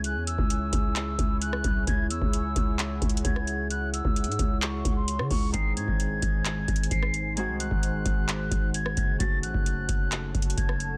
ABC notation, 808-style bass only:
X:1
M:4/4
L:1/16
Q:1/4=131
K:C#m
V:1 name="808-style bass" clef=bass
C,, E,,2 C,,3 C,,4 C,,4 ^B,,,2 | C,,2 E,, C,,3 C,,4 C,,2 C,,4- | C,,3 C,,2 G,, C,,4 C,,3 C, C,,2 | G,,,2 G,, G,,,3 G,,,4 G,,,2 G,,,4- |
G,,, ^B,,,2 G,,,3 G,,,4 G,,,4 F,,,2 | F,,,2 A,,, F,,,3 F,,,4 F,,,2 F,,,4 |]